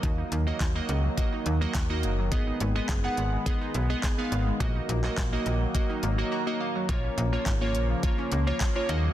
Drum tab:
HH |x-x-x-x-x-x-x-x-|x-x-x-x-x-x-x-x-|x-x-x-x-x-x-----|x-x-x-x-x-x-x-x-|
CP |----x-------x---|----x-------x---|---xx-----------|----x-------x---|
SD |----o-------o---|----o-------o---|----o-----------|----o-------o---|
BD |o---o---o---o---|o---o---o---o---|o---o---o-------|o---o---o---o---|